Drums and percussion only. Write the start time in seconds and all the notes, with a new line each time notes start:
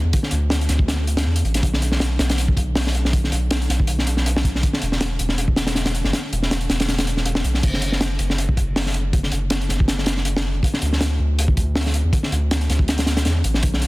0.13 kick, closed hi-hat
0.23 snare
0.31 closed hi-hat
0.50 snare, closed hi-hat
0.61 closed hi-hat
0.69 snare, closed hi-hat
0.79 kick
0.88 snare, closed hi-hat
1.07 closed hi-hat
1.17 snare, closed hi-hat
1.36 closed hi-hat
1.45 closed hi-hat
1.54 snare, closed hi-hat
1.63 kick, closed hi-hat
1.73 snare
1.82 closed hi-hat
1.92 snare
2.00 snare, closed hi-hat
2.19 snare, closed hi-hat
2.29 snare, closed hi-hat
2.38 closed hi-hat
2.48 kick
2.57 kick, closed hi-hat
2.75 snare, open hi-hat
2.87 snare
2.95 closed hi-hat
3.05 snare
3.13 kick, closed hi-hat
3.24 snare
3.32 closed hi-hat
3.51 snare, closed hi-hat
3.62 closed hi-hat
3.69 snare, closed hi-hat
3.80 kick
3.87 closed hi-hat
3.99 snare
4.07 closed hi-hat
4.17 snare
4.26 closed hi-hat
4.36 snare
4.44 kick, closed hi-hat
4.55 snare
4.63 kick, closed hi-hat
4.73 snare
4.82 closed hi-hat
4.92 snare
5.01 snare, closed hi-hat
5.19 closed hi-hat
5.29 snare
5.38 closed hi-hat
5.48 kick
5.56 snare, closed hi-hat
5.67 snare, closed hi-hat
5.75 snare, closed hi-hat
5.86 snare, closed hi-hat
5.95 closed hi-hat
6.04 snare
6.13 snare, closed hi-hat
6.33 closed hi-hat
6.42 snare
6.51 snare, closed hi-hat
6.61 closed hi-hat
6.70 snare, closed hi-hat
6.80 snare, closed hi-hat
6.88 snare, closed hi-hat
6.98 snare, closed hi-hat
7.07 closed hi-hat
7.17 snare
7.25 closed hi-hat
7.35 snare
7.44 closed hi-hat
7.54 snare
7.63 kick, closed hi-hat, crash
7.74 snare
7.82 closed hi-hat
7.92 snare
8.01 snare, closed hi-hat
8.19 closed hi-hat
8.30 snare
8.38 closed hi-hat
8.49 kick
8.57 kick, closed hi-hat
8.76 snare, open hi-hat
8.86 snare
8.94 closed hi-hat
9.13 kick, closed hi-hat
9.23 snare
9.32 closed hi-hat
9.50 snare, closed hi-hat
9.61 closed hi-hat
9.69 snare, closed hi-hat
9.80 kick
9.88 snare, closed hi-hat
9.99 snare
10.06 snare, closed hi-hat
10.17 snare
10.25 closed hi-hat
10.37 snare
10.63 kick, closed hi-hat
10.74 snare
10.82 closed hi-hat
10.93 snare
11.01 snare, closed hi-hat
11.39 closed hi-hat
11.48 kick
11.57 kick, closed hi-hat
11.75 snare, open hi-hat
11.86 snare
11.94 closed hi-hat
12.13 kick, closed hi-hat
12.23 snare
12.32 closed hi-hat
12.51 snare, closed hi-hat
12.61 closed hi-hat
12.70 snare, closed hi-hat
12.79 kick
12.88 snare, closed hi-hat
12.98 snare, closed hi-hat
13.06 snare, closed hi-hat
13.17 snare, closed hi-hat
13.25 snare, closed hi-hat
13.44 closed hi-hat
13.54 snare
13.63 kick, closed hi-hat
13.74 snare
13.82 closed hi-hat